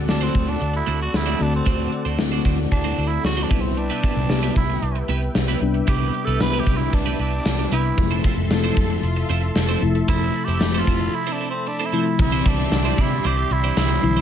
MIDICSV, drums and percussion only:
0, 0, Header, 1, 2, 480
1, 0, Start_track
1, 0, Key_signature, 0, "major"
1, 0, Tempo, 526316
1, 1519, Time_signature, 4, 2, 24, 8
1, 12962, End_track
2, 0, Start_track
2, 0, Title_t, "Drums"
2, 80, Note_on_c, 9, 38, 105
2, 171, Note_off_c, 9, 38, 0
2, 197, Note_on_c, 9, 42, 46
2, 288, Note_off_c, 9, 42, 0
2, 318, Note_on_c, 9, 36, 88
2, 320, Note_on_c, 9, 42, 72
2, 410, Note_off_c, 9, 36, 0
2, 411, Note_off_c, 9, 42, 0
2, 441, Note_on_c, 9, 42, 56
2, 532, Note_off_c, 9, 42, 0
2, 561, Note_on_c, 9, 42, 85
2, 652, Note_off_c, 9, 42, 0
2, 682, Note_on_c, 9, 42, 53
2, 773, Note_off_c, 9, 42, 0
2, 801, Note_on_c, 9, 42, 61
2, 892, Note_off_c, 9, 42, 0
2, 922, Note_on_c, 9, 42, 59
2, 1013, Note_off_c, 9, 42, 0
2, 1041, Note_on_c, 9, 38, 115
2, 1132, Note_off_c, 9, 38, 0
2, 1158, Note_on_c, 9, 42, 58
2, 1249, Note_off_c, 9, 42, 0
2, 1278, Note_on_c, 9, 42, 77
2, 1369, Note_off_c, 9, 42, 0
2, 1399, Note_on_c, 9, 42, 58
2, 1490, Note_off_c, 9, 42, 0
2, 1517, Note_on_c, 9, 36, 108
2, 1517, Note_on_c, 9, 42, 85
2, 1608, Note_off_c, 9, 36, 0
2, 1609, Note_off_c, 9, 42, 0
2, 1638, Note_on_c, 9, 42, 45
2, 1730, Note_off_c, 9, 42, 0
2, 1755, Note_on_c, 9, 42, 84
2, 1846, Note_off_c, 9, 42, 0
2, 1875, Note_on_c, 9, 42, 51
2, 1966, Note_off_c, 9, 42, 0
2, 1994, Note_on_c, 9, 38, 107
2, 2085, Note_off_c, 9, 38, 0
2, 2114, Note_on_c, 9, 42, 48
2, 2205, Note_off_c, 9, 42, 0
2, 2232, Note_on_c, 9, 42, 70
2, 2236, Note_on_c, 9, 36, 83
2, 2324, Note_off_c, 9, 42, 0
2, 2327, Note_off_c, 9, 36, 0
2, 2353, Note_on_c, 9, 42, 53
2, 2445, Note_off_c, 9, 42, 0
2, 2477, Note_on_c, 9, 42, 92
2, 2478, Note_on_c, 9, 36, 83
2, 2568, Note_off_c, 9, 42, 0
2, 2569, Note_off_c, 9, 36, 0
2, 2597, Note_on_c, 9, 42, 53
2, 2688, Note_off_c, 9, 42, 0
2, 2718, Note_on_c, 9, 42, 59
2, 2809, Note_off_c, 9, 42, 0
2, 2840, Note_on_c, 9, 42, 62
2, 2931, Note_off_c, 9, 42, 0
2, 2961, Note_on_c, 9, 38, 109
2, 3052, Note_off_c, 9, 38, 0
2, 3077, Note_on_c, 9, 42, 56
2, 3168, Note_off_c, 9, 42, 0
2, 3198, Note_on_c, 9, 46, 73
2, 3199, Note_on_c, 9, 36, 103
2, 3289, Note_off_c, 9, 46, 0
2, 3290, Note_off_c, 9, 36, 0
2, 3319, Note_on_c, 9, 42, 59
2, 3410, Note_off_c, 9, 42, 0
2, 3440, Note_on_c, 9, 42, 81
2, 3531, Note_off_c, 9, 42, 0
2, 3559, Note_on_c, 9, 42, 49
2, 3650, Note_off_c, 9, 42, 0
2, 3677, Note_on_c, 9, 42, 85
2, 3681, Note_on_c, 9, 36, 104
2, 3768, Note_off_c, 9, 42, 0
2, 3772, Note_off_c, 9, 36, 0
2, 3798, Note_on_c, 9, 42, 52
2, 3889, Note_off_c, 9, 42, 0
2, 3918, Note_on_c, 9, 38, 109
2, 4010, Note_off_c, 9, 38, 0
2, 4039, Note_on_c, 9, 42, 50
2, 4130, Note_off_c, 9, 42, 0
2, 4158, Note_on_c, 9, 42, 73
2, 4160, Note_on_c, 9, 36, 87
2, 4250, Note_off_c, 9, 42, 0
2, 4251, Note_off_c, 9, 36, 0
2, 4281, Note_on_c, 9, 42, 59
2, 4372, Note_off_c, 9, 42, 0
2, 4400, Note_on_c, 9, 42, 90
2, 4492, Note_off_c, 9, 42, 0
2, 4518, Note_on_c, 9, 42, 54
2, 4610, Note_off_c, 9, 42, 0
2, 4638, Note_on_c, 9, 42, 63
2, 4729, Note_off_c, 9, 42, 0
2, 4762, Note_on_c, 9, 42, 60
2, 4853, Note_off_c, 9, 42, 0
2, 4880, Note_on_c, 9, 38, 119
2, 4971, Note_off_c, 9, 38, 0
2, 5000, Note_on_c, 9, 42, 58
2, 5091, Note_off_c, 9, 42, 0
2, 5119, Note_on_c, 9, 42, 74
2, 5211, Note_off_c, 9, 42, 0
2, 5240, Note_on_c, 9, 42, 58
2, 5331, Note_off_c, 9, 42, 0
2, 5360, Note_on_c, 9, 36, 114
2, 5362, Note_on_c, 9, 42, 88
2, 5452, Note_off_c, 9, 36, 0
2, 5453, Note_off_c, 9, 42, 0
2, 5480, Note_on_c, 9, 42, 49
2, 5571, Note_off_c, 9, 42, 0
2, 5600, Note_on_c, 9, 42, 86
2, 5691, Note_off_c, 9, 42, 0
2, 5721, Note_on_c, 9, 42, 51
2, 5813, Note_off_c, 9, 42, 0
2, 5841, Note_on_c, 9, 38, 103
2, 5841, Note_on_c, 9, 54, 64
2, 5932, Note_off_c, 9, 38, 0
2, 5932, Note_off_c, 9, 54, 0
2, 5960, Note_on_c, 9, 42, 50
2, 6051, Note_off_c, 9, 42, 0
2, 6079, Note_on_c, 9, 36, 87
2, 6080, Note_on_c, 9, 42, 78
2, 6171, Note_off_c, 9, 36, 0
2, 6171, Note_off_c, 9, 42, 0
2, 6200, Note_on_c, 9, 42, 57
2, 6291, Note_off_c, 9, 42, 0
2, 6320, Note_on_c, 9, 36, 81
2, 6320, Note_on_c, 9, 42, 86
2, 6411, Note_off_c, 9, 42, 0
2, 6412, Note_off_c, 9, 36, 0
2, 6439, Note_on_c, 9, 42, 51
2, 6530, Note_off_c, 9, 42, 0
2, 6559, Note_on_c, 9, 42, 60
2, 6650, Note_off_c, 9, 42, 0
2, 6682, Note_on_c, 9, 42, 62
2, 6773, Note_off_c, 9, 42, 0
2, 6797, Note_on_c, 9, 54, 66
2, 6800, Note_on_c, 9, 38, 116
2, 6889, Note_off_c, 9, 54, 0
2, 6891, Note_off_c, 9, 38, 0
2, 6918, Note_on_c, 9, 42, 57
2, 7009, Note_off_c, 9, 42, 0
2, 7039, Note_on_c, 9, 42, 77
2, 7130, Note_off_c, 9, 42, 0
2, 7159, Note_on_c, 9, 42, 60
2, 7250, Note_off_c, 9, 42, 0
2, 7276, Note_on_c, 9, 36, 109
2, 7276, Note_on_c, 9, 42, 85
2, 7367, Note_off_c, 9, 36, 0
2, 7368, Note_off_c, 9, 42, 0
2, 7394, Note_on_c, 9, 42, 51
2, 7485, Note_off_c, 9, 42, 0
2, 7513, Note_on_c, 9, 42, 83
2, 7518, Note_on_c, 9, 36, 103
2, 7604, Note_off_c, 9, 42, 0
2, 7609, Note_off_c, 9, 36, 0
2, 7635, Note_on_c, 9, 42, 52
2, 7726, Note_off_c, 9, 42, 0
2, 7758, Note_on_c, 9, 38, 109
2, 7758, Note_on_c, 9, 54, 66
2, 7849, Note_off_c, 9, 54, 0
2, 7850, Note_off_c, 9, 38, 0
2, 7877, Note_on_c, 9, 42, 47
2, 7968, Note_off_c, 9, 42, 0
2, 7997, Note_on_c, 9, 36, 89
2, 7998, Note_on_c, 9, 42, 75
2, 8088, Note_off_c, 9, 36, 0
2, 8090, Note_off_c, 9, 42, 0
2, 8117, Note_on_c, 9, 42, 60
2, 8209, Note_off_c, 9, 42, 0
2, 8235, Note_on_c, 9, 42, 87
2, 8327, Note_off_c, 9, 42, 0
2, 8357, Note_on_c, 9, 42, 56
2, 8448, Note_off_c, 9, 42, 0
2, 8477, Note_on_c, 9, 42, 59
2, 8568, Note_off_c, 9, 42, 0
2, 8598, Note_on_c, 9, 42, 60
2, 8690, Note_off_c, 9, 42, 0
2, 8713, Note_on_c, 9, 54, 70
2, 8716, Note_on_c, 9, 38, 117
2, 8805, Note_off_c, 9, 54, 0
2, 8807, Note_off_c, 9, 38, 0
2, 8831, Note_on_c, 9, 42, 58
2, 8923, Note_off_c, 9, 42, 0
2, 8955, Note_on_c, 9, 42, 75
2, 9046, Note_off_c, 9, 42, 0
2, 9075, Note_on_c, 9, 42, 57
2, 9166, Note_off_c, 9, 42, 0
2, 9195, Note_on_c, 9, 42, 86
2, 9196, Note_on_c, 9, 36, 112
2, 9287, Note_off_c, 9, 36, 0
2, 9287, Note_off_c, 9, 42, 0
2, 9313, Note_on_c, 9, 42, 51
2, 9404, Note_off_c, 9, 42, 0
2, 9431, Note_on_c, 9, 42, 86
2, 9522, Note_off_c, 9, 42, 0
2, 9553, Note_on_c, 9, 42, 49
2, 9644, Note_off_c, 9, 42, 0
2, 9673, Note_on_c, 9, 38, 116
2, 9673, Note_on_c, 9, 54, 64
2, 9764, Note_off_c, 9, 38, 0
2, 9764, Note_off_c, 9, 54, 0
2, 9795, Note_on_c, 9, 42, 51
2, 9887, Note_off_c, 9, 42, 0
2, 9915, Note_on_c, 9, 42, 79
2, 9917, Note_on_c, 9, 36, 84
2, 10006, Note_off_c, 9, 42, 0
2, 10008, Note_off_c, 9, 36, 0
2, 10037, Note_on_c, 9, 42, 58
2, 10129, Note_off_c, 9, 42, 0
2, 11119, Note_on_c, 9, 36, 121
2, 11120, Note_on_c, 9, 49, 106
2, 11210, Note_off_c, 9, 36, 0
2, 11211, Note_off_c, 9, 49, 0
2, 11238, Note_on_c, 9, 42, 52
2, 11329, Note_off_c, 9, 42, 0
2, 11357, Note_on_c, 9, 42, 88
2, 11361, Note_on_c, 9, 36, 107
2, 11448, Note_off_c, 9, 42, 0
2, 11452, Note_off_c, 9, 36, 0
2, 11480, Note_on_c, 9, 42, 56
2, 11571, Note_off_c, 9, 42, 0
2, 11599, Note_on_c, 9, 54, 67
2, 11600, Note_on_c, 9, 38, 118
2, 11691, Note_off_c, 9, 38, 0
2, 11691, Note_off_c, 9, 54, 0
2, 11718, Note_on_c, 9, 42, 49
2, 11809, Note_off_c, 9, 42, 0
2, 11838, Note_on_c, 9, 42, 80
2, 11839, Note_on_c, 9, 36, 91
2, 11930, Note_off_c, 9, 36, 0
2, 11930, Note_off_c, 9, 42, 0
2, 11960, Note_on_c, 9, 42, 62
2, 12052, Note_off_c, 9, 42, 0
2, 12078, Note_on_c, 9, 42, 96
2, 12169, Note_off_c, 9, 42, 0
2, 12199, Note_on_c, 9, 42, 55
2, 12290, Note_off_c, 9, 42, 0
2, 12319, Note_on_c, 9, 42, 65
2, 12410, Note_off_c, 9, 42, 0
2, 12441, Note_on_c, 9, 42, 63
2, 12532, Note_off_c, 9, 42, 0
2, 12556, Note_on_c, 9, 54, 70
2, 12559, Note_on_c, 9, 38, 121
2, 12647, Note_off_c, 9, 54, 0
2, 12650, Note_off_c, 9, 38, 0
2, 12674, Note_on_c, 9, 42, 60
2, 12765, Note_off_c, 9, 42, 0
2, 12796, Note_on_c, 9, 42, 76
2, 12887, Note_off_c, 9, 42, 0
2, 12919, Note_on_c, 9, 42, 59
2, 12962, Note_off_c, 9, 42, 0
2, 12962, End_track
0, 0, End_of_file